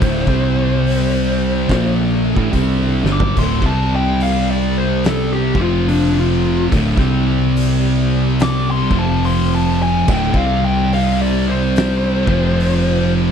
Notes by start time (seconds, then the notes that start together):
Already playing: C5
0.01 D1 D2 A2 D4 A4 E5, kick, open hi-hat
0.27 C2 C3 G3 C4 G4 D5, kick
0.86 open hi-hat
1.68 A#1 A#2 F3 A#3 D4 A4 E5, kick, snare, open hi-hat
2.37 A1 A2 E3, kick
2.53 C2 C3 G3 C4, kick, open hi-hat
3.04 G1 G2 D3 G3, snare
3.13 D6
3.20 floor tom
3.37 D1 D2 A2 C6, kick, open hi-hat, crash
3.62 C2 C3 G3 C4 G4 D5, kick
3.66 A5
3.96 G5
4.20 F5, open hi-hat
4.51 D5
4.78 C5
5.04 A4, snare, open hi-hat
5.32 G4
5.55 F1 F2 C3 F3 F4 C5 G5, kick
5.61 F4
5.88 D4, open hi-hat
6.20 F4
6.72 D1 D2 A2 D4 A4 E5, kick, open hi-hat
6.97 C2 C3 G3 C4 G4 D5, kick, snare
7.56 open hi-hat
8.40 D6, snare, open hi-hat
8.71 C6
8.90 F1 F2 C3 F3 F4 C5 G5, kick
8.99 A5
9.24 C6, open hi-hat
9.55 A5
9.82 G#5
10.08 D1 D2 A2 D4 A4 E5 G5, kick, crash
10.33 C2 C3 G3 C4 G4 D5, kick
10.37 F5
10.64 G5
10.93 F5, open hi-hat
11.22 D5
11.49 C5
11.76 snare, open hi-hat
12.27 F1 F2 C3 F3 F4 C5 G5, kick
12.60 open hi-hat